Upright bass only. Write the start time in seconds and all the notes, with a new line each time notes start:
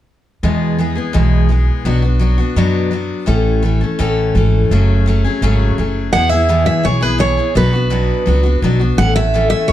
0.43 E2
1.15 B1
1.85 B1
2.56 F#2
3.27 A1
4.00 A1
4.35 G#1
4.71 F#1
5.42 G#1
5.78 F#1
6.13 E2
6.84 B1
7.55 B1
8.27 C#2
8.62 B1
8.97 A1
9.69 E1